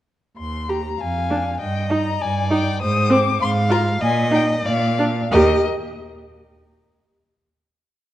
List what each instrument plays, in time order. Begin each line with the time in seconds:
0.38 cello D#2, violin C6
0.69 viola G4, violin A#5
1.00 cello F2, violin F5 G#5
1.30 viola D4
1.60 cello G2, violin D#5 G5
1.90 viola D#4, violin A#5
2.21 cello G2, violin D5 G#5
2.50 viola D#4, violin G5
2.81 cello G#2, violin C5 D#6
3.09 viola C4, violin D6
3.42 cello G#2, violin F5 C6
3.70 viola F4, violin A#5
4.01 cello A#2, violin D#5 G#5
4.31 viola D#4, violin G5
4.65 cello A#2, violin D5 F5
4.98 viola D4
5.31 cello D#2, viola G4, violin A#4 D#5